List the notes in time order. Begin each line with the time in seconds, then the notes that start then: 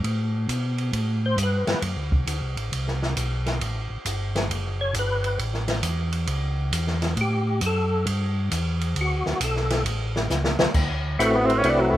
0.04 A2, ride
0.48 B2, kick, hi-hat pedal, ride
0.78 ride
0.93 A2, kick, ride
1.26 C5
1.37 G2, kick, hi-hat pedal, ride
1.43 B4
1.67 G2, snare, ride
1.81 F#2, kick, ride
1.96 D2
2.11 C2, kick
2.27 D2, kick, hi-hat pedal, ride
2.41 C2
2.57 A1, ride
2.72 C2, kick, ride
2.88 snare
3.03 snare
3.16 B1, kick, hi-hat pedal, ride
3.46 snare, ride
3.60 A1, kick, ride
3.90 A1
4.05 G1, kick, hi-hat pedal, ride
4.35 snare, ride
4.50 F#1, kick, ride
4.81 C#5
4.94 G1, kick, hi-hat pedal, ride
4.99 B4
5.24 ride
5.38 A1, kick, ride
5.54 snare
5.68 snare, ride
5.83 E2, kick, hi-hat pedal, ride
6.12 ride
6.27 C#2, kick, ride
6.72 E2, kick, hi-hat pedal, ride
6.87 snare
7.02 snare, ride
7.17 A2, kick, ride
7.21 G4
7.61 F#2, kick, hi-hat pedal, ride
7.66 A4
8.06 G2, kick, ride
8.51 E2, kick, hi-hat pedal, ride
8.81 ride
8.96 D2, kick, ride
9.01 F#4
9.26 D2, snare
9.40 B1 A4, kick, hi-hat pedal, ride
9.56 snare
9.70 snare, ride
9.85 A1, kick, ride
10.16 snare
10.30 C#2, snare, hi-hat pedal
10.44 snare
10.59 C#2, snare
10.74 D2, kick, crash
11.19 A1 A3 C4 E4 F#4 B4, kick, hi-hat pedal, ride
11.24 A3
11.36 B3
11.45 C4
11.50 ride
11.58 C#4
11.63 C2 A3 C4 E4 F#4 B4, kick, ride
11.69 D4
11.80 F#3
11.91 A3, kick